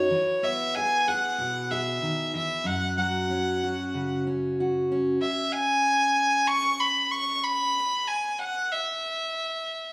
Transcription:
0.00 0.10 F#2 medium
0.00 0.45 C#5 medium
0.10 2.33 E3 medium
0.43 2.62 B3 medium
0.43 0.76 E5 medium
0.75 1.07 G#4 medium
0.75 1.09 G#5 loud
1.08 1.70 G#4 medium
1.08 1.72 F#5 loud
1.38 2.01 B2 medium
1.71 2.63 G#4 medium
1.71 2.35 E5 medium
2.02 2.34 D#3 medium
2.34 2.66 E3 medium
2.34 2.68 E5 medium
2.64 5.21 F#2 medium
2.64 2.96 F#5 medium
2.97 5.17 F#3 soft
2.97 4.21 F#5 medium
3.30 4.26 C#4 medium
3.63 4.59 F#4 medium
3.94 5.18 C#3 medium
4.27 4.90 C#4 soft
4.60 5.23 F#4 medium
4.92 7.78 C#4 soft
5.21 5.54 E5 medium
5.52 6.49 G#5 medium
6.48 6.81 C#6 loud
6.80 7.13 B5 medium
7.11 7.45 C#6 medium
7.43 8.09 B5 medium
8.08 8.40 G#5 medium
8.39 8.73 F#5 medium
8.71 9.93 E5 medium

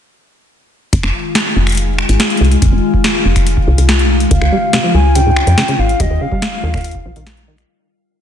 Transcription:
0.93 1.01 F1 loud
0.93 4.28 D#3 medium
0.93 4.28 G#3 medium
0.93 5.96 F4 medium
0.93 kick loud
0.93 closed hi-hat medium
1.03 1.11 F1 loud
1.03 finger snap medium
1.35 snare loud
1.35 closed hi-hat medium
1.56 2.05 F1 loud
1.67 finger snap medium
1.67 closed hi-hat soft
1.70 closed hi-hat soft
1.72 closed hi-hat soft
1.75 closed hi-hat soft
1.77 closed hi-hat medium
1.99 finger snap medium
2.09 2.17 G#1 medium
2.09 closed hi-hat medium
2.20 snare loud
2.20 closed hi-hat medium
2.30 closed hi-hat soft
2.37 2.56 C2 loud
2.37 closed hi-hat soft
2.44 closed hi-hat soft
2.51 closed hi-hat soft
2.62 2.70 F1 medium
2.62 kick loud
2.62 closed hi-hat medium
2.66 kick medium
2.69 2.80 F1 medium
2.69 kick medium
2.94 kick medium
3.04 snare loud
3.04 closed hi-hat medium
3.25 3.63 F1 loud
3.36 finger snap medium
3.36 kick medium
3.36 closed hi-hat medium
3.47 closed hi-hat medium
3.57 kick medium
3.68 3.75 C2 loud
3.78 4.27 C2 medium
3.78 closed hi-hat medium
3.89 snare loud
3.89 closed hi-hat medium
3.99 closed hi-hat soft
4.20 closed hi-hat soft
4.31 4.39 C#2 loud
4.31 5.98 C#3 medium
4.31 5.98 C4 medium
4.31 4.90 F5 loud
4.31 kick loud
4.31 closed hi-hat medium
4.42 4.49 C#2 loud
4.42 finger snap medium
4.52 4.58 G3 loud
4.73 4.79 C3 medium
4.73 snare loud
4.73 closed hi-hat medium
4.84 4.96 F3 medium
4.94 5.43 C#2 medium
4.94 5.00 G#3 medium
4.94 5.14 G#5 loud
5.15 5.21 C#3 medium
5.15 5.81 G5 loud
5.15 closed hi-hat medium
5.26 5.31 G#2 medium
5.37 finger snap medium
5.47 5.55 F2 medium
5.47 closed hi-hat medium
5.58 5.63 C#3 medium
5.58 snare loud
5.58 closed hi-hat medium
5.68 5.76 C#3 loud
5.68 closed hi-hat soft
5.79 5.94 G#1 loud
5.79 6.02 F5 medium
5.89 closed hi-hat soft
6.00 6.08 D#2 loud
6.00 7.67 D#3 medium
6.00 7.67 G3 medium
6.00 6.05 G3 loud
6.00 7.67 F4 medium
6.00 6.23 D#5 medium
6.00 kick loud
6.00 closed hi-hat medium
6.11 6.18 D#2 loud
6.21 6.27 C#3 medium
6.21 7.48 F5 loud
6.32 6.44 G3 medium
6.32 kick medium
6.42 6.48 A#3 medium
6.42 snare loud
6.42 closed hi-hat medium
6.63 7.01 D#2 loud
6.63 6.69 D#3 medium
6.74 6.79 A#2 loud
6.74 finger snap medium
6.74 kick medium
6.74 closed hi-hat soft
6.77 closed hi-hat soft
6.81 closed hi-hat soft
6.84 closed hi-hat medium
6.88 closed hi-hat soft
6.91 kick medium
6.91 closed hi-hat soft
7.06 7.13 A#1 loud
7.06 7.11 F3 medium
7.16 7.65 A#1 medium
7.16 7.24 D#3 loud
7.16 closed hi-hat medium
7.27 snare loud
7.27 closed hi-hat medium
7.37 closed hi-hat soft
7.48 7.56 D#3 medium
7.58 finger snap soft
7.58 closed hi-hat soft

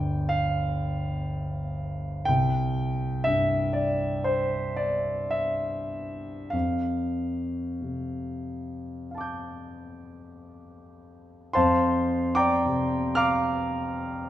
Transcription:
0.00 2.24 G1 medium
0.00 2.28 D2 soft
0.00 2.30 D5 medium
0.00 0.30 G5 medium
0.29 2.27 F5 medium
2.25 6.49 C2 medium
2.25 3.26 G5 medium
3.24 6.53 G2 soft
3.24 3.75 E5 medium
3.73 4.26 D5 medium
4.24 4.79 C5 medium
4.76 5.33 D5 medium
5.31 6.51 E5 medium
6.50 11.51 F2 soft
6.50 9.10 F5 medium
7.81 11.55 C3 soft
9.11 11.51 F5 soft
9.11 11.53 A5 soft
9.18 11.54 D6 soft
9.18 11.56 G6 soft
11.53 14.29 F2 medium
11.53 12.33 C5 medium
11.53 12.34 F5 medium
11.53 12.34 A5 medium
11.53 12.37 C6 medium
12.35 13.12 D5 medium
12.35 13.12 G5 medium
12.35 13.12 A#5 medium
12.35 13.15 D6 medium
12.65 14.29 C3 soft
13.15 14.29 F5 medium
13.15 14.29 A#5 medium
13.15 14.29 D6 medium
13.15 14.29 F6 medium

